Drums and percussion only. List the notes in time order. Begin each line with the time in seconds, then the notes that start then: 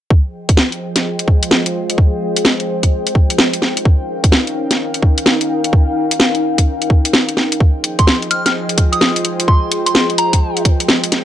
0.10 kick
0.49 kick, closed hi-hat
0.57 snare
0.72 closed hi-hat
0.96 snare, closed hi-hat
1.19 closed hi-hat
1.28 kick
1.43 closed hi-hat
1.51 snare
1.66 closed hi-hat
1.90 closed hi-hat
1.98 kick
2.36 closed hi-hat
2.45 snare
2.60 closed hi-hat
2.83 kick, closed hi-hat
3.07 closed hi-hat
3.15 kick
3.30 closed hi-hat
3.38 snare
3.53 closed hi-hat
3.62 snare
3.77 closed hi-hat
3.85 kick
4.24 kick, closed hi-hat
4.32 snare
4.47 closed hi-hat
4.71 snare, closed hi-hat
4.94 closed hi-hat
5.03 kick
5.18 closed hi-hat
5.26 snare
5.41 closed hi-hat
5.64 closed hi-hat
5.73 kick
6.11 closed hi-hat
6.20 snare
6.35 closed hi-hat
6.58 kick, closed hi-hat
6.82 closed hi-hat
6.90 kick
7.05 closed hi-hat
7.13 snare
7.29 closed hi-hat
7.37 snare
7.52 closed hi-hat
7.60 kick
7.84 closed hi-hat
7.99 kick, closed hi-hat
8.07 snare
8.22 closed hi-hat
8.31 closed hi-hat
8.46 snare, closed hi-hat
8.69 closed hi-hat
8.78 kick, closed hi-hat
8.93 closed hi-hat
9.01 snare
9.16 closed hi-hat
9.25 closed hi-hat
9.40 closed hi-hat
9.48 kick
9.72 closed hi-hat
9.86 closed hi-hat
9.95 snare
10.10 closed hi-hat
10.18 closed hi-hat
10.33 kick, closed hi-hat
10.57 closed hi-hat
10.65 kick, closed hi-hat
10.80 closed hi-hat
10.89 snare
11.04 closed hi-hat
11.12 snare, closed hi-hat